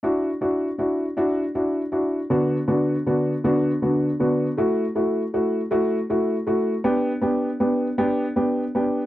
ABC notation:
X:1
M:6/8
L:1/8
Q:3/8=53
K:D
V:1 name="Upright piano"
[DEF] [DEF] [DEF] [DEF] [DEF] [DEF] | [D,B,DF] [D,B,DF] [D,B,DF] [D,B,DF] [D,B,DF] [D,B,DF] | [A,EF] [A,EF] [A,EF] [A,EF] [A,EF] [A,EF] | [B,DG] [B,DG] [B,DG] [B,DG] [B,DG] [B,DG] |]